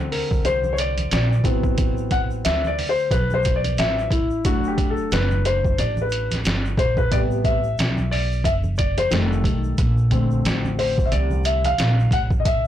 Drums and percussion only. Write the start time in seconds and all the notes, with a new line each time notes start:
0.12 open hi-hat, low conga, shaker
0.31 kick, shaker
0.45 closed hi-hat, high conga, shaker
0.64 high conga, shaker
0.77 closed hi-hat, shaker
0.98 closed hi-hat, high conga, shaker
1.11 snare, closed hi-hat, shaker
1.32 shaker
1.44 kick, closed hi-hat, low conga, shaker
1.63 kick, shaker
1.78 kick, closed hi-hat, shaker
1.97 shaker
2.11 kick, closed hi-hat, shaker
2.30 shaker
2.45 snare, closed hi-hat, shaker
2.65 high conga, shaker
2.79 open hi-hat, low conga, shaker
2.98 shaker
3.11 kick, closed hi-hat, high conga, shaker
3.30 high conga, shaker
3.43 kick, closed hi-hat, shaker
3.64 closed hi-hat, high conga, shaker
3.78 snare, closed hi-hat, shaker
3.99 shaker
4.11 kick, closed hi-hat, low conga, shaker
4.30 shaker
4.45 kick, closed hi-hat, shaker
4.64 shaker
4.78 kick, closed hi-hat, shaker
4.97 shaker
5.11 snare, closed hi-hat, shaker
5.31 high conga, shaker
5.45 closed hi-hat, low conga, shaker
5.65 kick, shaker
5.78 closed hi-hat, high conga, shaker
5.97 high conga, shaker
6.10 closed hi-hat, shaker
6.31 snare, closed hi-hat, high conga, shaker
6.45 snare, closed hi-hat, shaker
6.65 shaker
6.77 kick, closed hi-hat, low conga, shaker
6.97 kick, shaker
7.11 kick, closed hi-hat, shaker
7.31 shaker
7.44 kick, closed hi-hat, shaker
7.63 shaker
7.78 snare, closed hi-hat, shaker
7.98 high conga, shaker
8.12 open hi-hat, low conga, shaker
8.32 shaker
8.44 kick, closed hi-hat, high conga, shaker
8.64 high conga, shaker
8.76 kick, closed hi-hat, shaker
8.97 closed hi-hat, high conga, shaker
9.11 snare, closed hi-hat, shaker
9.32 shaker
9.44 kick, closed hi-hat, low conga, shaker
9.64 shaker
9.78 kick, closed hi-hat, shaker
9.98 shaker
10.11 kick, closed hi-hat, shaker
10.31 shaker
10.45 snare, closed hi-hat, shaker
10.65 high conga, shaker
10.79 open hi-hat, low conga, shaker
10.98 kick, shaker
11.12 closed hi-hat, high conga, shaker
11.31 high conga, shaker
11.44 closed hi-hat, shaker
11.65 closed hi-hat, high conga, shaker
11.78 snare, closed hi-hat, shaker
12.00 shaker
12.11 kick, closed hi-hat, low conga, shaker
12.31 kick, shaker
12.45 kick, closed hi-hat, shaker